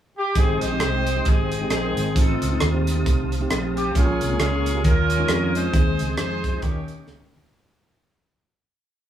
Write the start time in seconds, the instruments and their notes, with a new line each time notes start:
0.17 horn section G4
0.35 fingered electric bass G#1, tine electric piano G#2 G#3 C4 D#4 G4, horn section C4 D#4 G#4, tonewheel organ C5 D#5 G5 D#6, kick, closed hi-hat
0.61 fingered electric bass A#1, horn section D#4 G4 C5, closed hi-hat
0.71 tine electric piano G#3 C4 D#4 G4
0.80 fingered electric bass C2, cross-stick, closed hi-hat
0.93 tine electric piano G#3 C4 D#4 G4
1.07 closed hi-hat
1.16 tine electric piano G#3 C4 D#4 G4
1.25 fingered electric bass G#1, horn section C4 D#4 G#4, kick, closed hi-hat
1.52 closed hi-hat
1.60 tine electric piano G#3 C4 D#4 G4
1.70 fingered electric bass A#1, horn section C4 D#4 G#4, cross-stick, closed hi-hat
1.83 tine electric piano G#3 C4 D#4 A#4
1.96 fingered electric bass G#1, closed hi-hat
2.14 fingered electric bass A1, tine electric piano A2 A3 C4 D#4 F4, horn section C4 D#4 A4, tonewheel organ F5 A5, kick, closed hi-hat
2.42 fingered electric bass C#2, closed hi-hat
2.51 tine electric piano A3 C4 D#4 F4
2.60 fingered electric bass D#2, cross-stick, closed hi-hat
2.72 tine electric piano A3 C4 D#4 G4
2.87 closed hi-hat
2.95 tine electric piano A3 C4 D#4 G4
3.06 fingered electric bass C2, kick, closed hi-hat
3.32 closed hi-hat
3.41 tine electric piano A3 C4 D#4 G4
3.50 fingered electric bass A#1, cross-stick, closed hi-hat
3.62 tine electric piano A3 C4 D#4 G4
3.76 horn section G4, closed hi-hat
3.94 fingered electric bass A#1, tine electric piano A#2 G#3 A#3 C#4 F4, horn section C#4 F4 G#4, tonewheel organ A#4 G#5 C#6, kick, closed hi-hat
4.21 fingered electric bass C2, closed hi-hat
4.29 tine electric piano G#3 A#3 C#4 F4
4.39 fingered electric bass C#2, horn section C#4 F4 G#4, cross-stick, closed hi-hat
4.51 tine electric piano G#3 A#3 C#4 F4
4.66 closed hi-hat
4.73 tine electric piano G#3 A#3 C#4 G4
4.83 fingered electric bass D#2, tine electric piano D#3, horn section C#4 F4 A#4, tonewheel organ C#5 D#6, kick, closed hi-hat
5.10 closed hi-hat
5.18 tine electric piano G#3 C#4 D#4 F4
5.28 fingered electric bass F2, cross-stick, closed hi-hat
5.40 tine electric piano G#3 C#4 D#4 F4
5.54 horn section D#4 G#4 C5, closed hi-hat
5.72 fingered electric bass D#2, tine electric piano D#3 G#3 C4 D#4 G#4, tonewheel organ C5 D#5, kick, closed hi-hat
5.99 fingered electric bass C#2, closed hi-hat
6.08 tine electric piano G#3 C4 D#4 G#4
6.17 fingered electric bass F2, horn section D#4 G#4 C5, cross-stick, closed hi-hat
6.30 tine electric piano G#3 C4 D#4 G#4
6.44 kick, closed hi-hat
6.52 tine electric piano G#3 C4 D#4 F4
6.61 fingered electric bass D#2, tine electric piano D#3, horn section A#3 C#4 G4, tonewheel organ A#4 G5 C#6, kick, closed hi-hat
6.88 closed hi-hat
6.96 tine electric piano A#3 C#4 D#4 G4
7.06 fingered electric bass C#2, snare
7.19 tine electric piano A#3 C#4 D#4 A#4, mid tom
7.31 fingered electric bass D2
7.36 floor tom